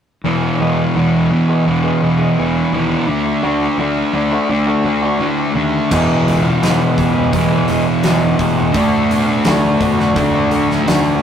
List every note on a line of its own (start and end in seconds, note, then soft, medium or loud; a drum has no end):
0.24 0.48 E1 medium
0.24 0.59 E2 medium
0.24 0.60 B2 medium
0.24 0.60 E3 medium
0.42 muted clean electric guitar stroke soft
0.59 0.83 E1 medium
0.59 0.95 E2 medium
0.59 0.96 B2 medium
0.59 0.83 E3 medium
0.59 0.96 E3 medium
0.59 0.83 G#3 medium
0.59 0.83 B3 medium
0.59 0.84 G#4 medium
0.95 1.42 E1 medium
0.95 1.30 E2 medium
0.95 1.30 B2 medium
0.95 1.30 E3 medium
0.95 muted clean electric guitar stroke soft
1.31 1.65 E2 medium
1.31 1.66 B2 medium
1.31 1.66 E3 medium
1.49 1.64 E3 medium
1.49 1.65 G#3 medium
1.49 1.65 B3 medium
1.49 1.65 G#4 medium
1.65 1.90 E1 medium
1.65 2.00 E2 medium
1.65 2.01 B2 medium
1.65 2.02 E3 medium
1.65 muted clean electric guitar stroke soft
1.83 2.07 E3 medium
1.83 2.07 G#3 medium
1.83 2.07 B3 medium
1.83 2.07 G#4 medium
2.02 2.26 E1 medium
2.02 2.36 E2 medium
2.02 2.37 B2 medium
2.02 2.37 E3 medium
2.18 2.43 E3 medium
2.18 2.42 G#3 medium
2.18 2.42 B3 medium
2.18 2.42 G#4 medium
2.38 2.62 E1 medium
2.38 2.72 E2 medium
2.38 2.73 B2 medium
2.38 2.74 E3 medium
2.54 muted clean electric guitar stroke soft
2.72 2.96 D#2 medium
2.72 3.06 E2 medium
2.72 3.07 B2 medium
2.72 3.07 E3 medium
3.08 3.31 D2 medium
3.08 3.43 D3 medium
3.08 3.43 A3 medium
3.08 3.44 D4 medium
3.25 muted clean electric guitar stroke soft
3.42 3.67 D2 medium
3.42 3.66 D3 medium
3.42 3.78 D3 medium
3.42 3.66 A3 medium
3.42 3.79 A3 medium
3.42 3.66 D4 medium
3.42 3.80 D4 medium
3.42 3.66 F#4 medium
3.78 4.02 D2 medium
3.78 4.13 D3 medium
3.78 4.13 A3 medium
3.78 4.14 D4 medium
3.78 muted clean electric guitar stroke soft
4.13 4.37 D2 medium
4.13 4.49 D3 medium
4.13 4.50 A3 medium
4.13 4.50 D4 medium
4.31 4.47 D3 medium
4.31 4.48 A3 medium
4.31 4.48 D4 medium
4.31 4.48 F#4 medium
4.49 4.73 D2 medium
4.49 4.84 D3 medium
4.49 4.85 A3 medium
4.49 4.85 D4 medium
4.49 muted clean electric guitar stroke soft
4.67 4.91 D3 medium
4.67 4.91 A3 medium
4.67 4.91 D4 medium
4.67 4.90 F#4 medium
4.84 5.08 D2 medium
4.84 5.19 D3 medium
4.84 5.20 A3 medium
4.84 5.20 D4 medium
5.02 5.26 D3 medium
5.02 5.26 A3 medium
5.02 5.26 D4 medium
5.02 5.26 F#4 medium
5.20 5.43 A2 medium
5.20 5.54 D3 medium
5.20 5.55 A3 medium
5.20 5.55 D4 medium
5.39 muted clean electric guitar stroke soft
5.54 5.78 D#2 medium
5.54 5.89 D3 medium
5.54 5.90 A3 medium
5.54 5.90 D4 medium
5.90 6.19 E1 medium
5.90 7.30 E2 medium
5.90 6.60 E2 medium
5.90 6.60 B2 medium
5.90 7.31 B2 medium
5.90 6.43 E3 medium
5.90 7.32 E3 medium
5.90 6.43 G#3 medium
5.90 6.43 B3 medium
5.90 6.42 G#4 medium
5.90 kick medium
5.90 crash medium
6.26 6.53 C#2 medium
6.26 open hi-hat soft
6.43 muted clean electric guitar stroke soft
6.61 6.89 E1 medium
6.61 7.32 E2 medium
6.61 7.33 B2 medium
6.61 6.96 E3 medium
6.61 6.97 G#3 medium
6.61 6.98 B3 medium
6.61 6.98 G#4 medium
6.61 snare loud
6.61 open hi-hat medium
6.97 7.25 C#2 medium
6.97 7.16 E3 medium
6.97 7.15 G#3 medium
6.97 7.14 B3 medium
6.97 7.13 G#4 medium
6.97 kick medium
6.97 open hi-hat soft
7.14 7.51 E3 medium
7.14 7.50 G#3 medium
7.14 7.50 B3 medium
7.14 7.49 G#4 medium
7.32 7.60 E1 medium
7.32 8.72 E2 medium
7.32 8.72 B2 medium
7.32 8.73 E3 medium
7.32 kick medium
7.32 open hi-hat medium
7.50 7.67 E3 soft
7.50 7.67 G#3 soft
7.50 7.68 B3 medium
7.50 7.69 G#4 medium
7.68 7.96 E1 medium
7.68 7.86 E3 medium
7.68 7.86 G#3 medium
7.68 7.85 B3 medium
7.68 7.85 G#4 medium
7.68 open hi-hat soft
7.86 muted clean electric guitar stroke soft
8.03 8.32 E1 medium
8.03 8.72 E2 medium
8.03 8.72 B2 medium
8.03 8.37 E3 medium
8.03 8.38 G#3 medium
8.03 8.39 B3 medium
8.03 8.39 G#4 medium
8.03 snare medium
8.03 open hi-hat medium
8.39 8.66 E1 medium
8.39 8.58 E3 medium
8.39 8.58 G#3 medium
8.39 8.57 B3 medium
8.39 8.56 G#4 medium
8.39 kick medium
8.39 open hi-hat soft
8.57 8.74 E3 medium
8.57 8.73 G#3 medium
8.57 8.73 B3 medium
8.57 8.72 G#4 medium
8.72 9.01 D2 medium
8.72 10.12 D3 medium
8.72 9.44 D3 medium
8.72 10.13 A3 medium
8.72 9.27 A3 medium
8.72 10.14 D4 medium
8.72 kick medium
8.72 open hi-hat medium
8.76 9.27 D4 medium
8.76 9.27 F#4 medium
9.11 9.38 B2 medium
9.11 open hi-hat soft
9.28 muted clean electric guitar stroke soft
9.45 9.72 D2 medium
9.45 9.79 D3 medium
9.45 9.79 A3 medium
9.45 9.80 D4 medium
9.45 9.81 F#4 medium
9.45 snare loud
9.45 open hi-hat medium
9.80 10.08 B2 medium
9.80 10.33 D3 medium
9.80 9.98 A3 medium
9.80 9.97 D4 medium
9.80 9.96 F#4 medium
9.80 kick medium
9.80 open hi-hat soft
9.98 10.34 A3 medium
9.98 10.33 D4 medium
9.98 10.32 F#4 medium
9.98 snare soft
10.14 10.43 D2 medium
10.14 11.22 D3 medium
10.14 11.22 A3 medium
10.14 11.22 D4 medium
10.14 kick medium
10.14 open hi-hat soft
10.33 10.50 A3 soft
10.33 10.51 D4 medium
10.33 10.52 F#4 medium
10.50 10.78 D2 medium
10.50 10.85 D3 medium
10.50 10.69 A3 medium
10.50 10.69 D4 medium
10.50 10.68 F#4 medium
10.50 open hi-hat soft
10.69 muted clean electric guitar stroke soft
10.69 snare soft
10.86 11.13 D2 medium
10.86 11.20 D3 medium
10.86 11.21 A3 medium
10.86 11.22 D4 medium
10.86 11.22 F#4 medium
10.86 snare medium
10.86 open hi-hat medium